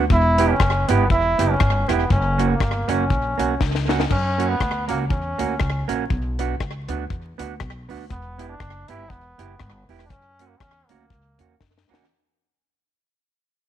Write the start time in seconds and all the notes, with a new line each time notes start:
0.10 E1 E4, kick
0.38 B3 E4 G4, closed hi-hat
0.50 C#4
0.60 F#1, kick, cross-stick
0.88 G1 B3 E4 G4, closed hi-hat
1.10 E1 E4, kick
1.38 F#1 B3 E4 G4, closed hi-hat
1.50 C#4
1.60 G1, muted hollow-body jazz guitar stroke, kick, cross-stick
1.88 E1 B3 E4 G4, cross-stick, closed hi-hat
2.10 F#1 C#4, kick
2.38 A#3 C#4 F#4, closed hi-hat
2.51 A#3
2.60 G1, kick, cross-stick
2.88 F#1 A#3 C#4 F#4, closed hi-hat
3.10 A#1, kick
3.37 B1 A#3 C#4 F#4, closed hi-hat
3.60 C#2, muted hollow-body jazz guitar stroke, kick, snare
3.75 snare
3.88 A#3 C#4 F#4, snare
4.00 snare
4.11 F#2 C#4, kick, crash
4.38 A#3 C#4 F#4, closed hi-hat
4.49 B3
4.60 D2, kick, cross-stick
4.88 C#2 A#3 C#4 F#4, closed hi-hat
5.09 E2 C#4, kick
5.38 D2 A#3 C#4 F#4, closed hi-hat
5.60 C#2, muted hollow-body jazz guitar stroke, kick, cross-stick
5.88 A#1 A#3 C#4 F#4, closed hi-hat
6.10 B1, kick
6.39 B3 D4 F#4, closed hi-hat
6.60 C#2, kick, cross-stick
6.88 D2 B3 D4 F#4, closed hi-hat
7.10 E2, kick
7.38 D2 B3 D4 F#4, closed hi-hat
7.60 B1, muted hollow-body jazz guitar stroke, kick, cross-stick
7.89 D2 B3 D4 F#4, open hi-hat
8.10 E1 B3, kick, hi-hat pedal
8.38 B3 E4 G4, closed hi-hat
8.49 D4
8.60 F#1, kick, cross-stick
8.88 G1 B3 E4 G4, closed hi-hat
9.10 E1 B3, kick
9.38 F#1 B3 E4 G4, closed hi-hat
9.60 G1, muted hollow-body jazz guitar stroke, kick, cross-stick
9.89 E1 B3 E4 G4, open hi-hat
9.99 cross-stick
10.05 D4
10.10 F#2 C#4, kick, hi-hat pedal
10.39 A#3 C#4 F#4, closed hi-hat
10.49 A#3
10.59 E2 C#4, kick, cross-stick
10.87 D2 A#3 C#4, closed hi-hat
10.91 F#4
11.10 C#2, kick
11.39 E2 A#3 C#4 F#4, closed hi-hat
11.60 F#2, muted hollow-body jazz guitar stroke, kick, snare
11.78 snare
11.89 E2 A#3 C#4 F#4
11.94 snare